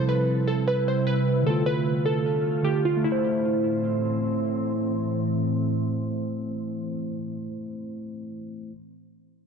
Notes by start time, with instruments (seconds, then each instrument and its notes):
Already playing: tine electric piano C3 G3 E4, ambient pad C3 G3 E4
0.09 synth keys B4
0.47 synth keys A4
0.68 synth keys B4
0.88 synth keys C5
1.07 synth keys B4
1.43 tine electric piano D3 A3, ambient pad D3 A3 F4, synth keys A4
1.50 tine electric piano F4
1.66 synth keys B4
2.06 synth keys A4
2.62 tine electric piano D3 A3 F4, synth keys G4
2.85 synth keys F4
2.97 tine electric piano A3
3.04 ambient pad A2 E3 C4, tine electric piano E4, synth keys E4
3.12 tine electric piano C5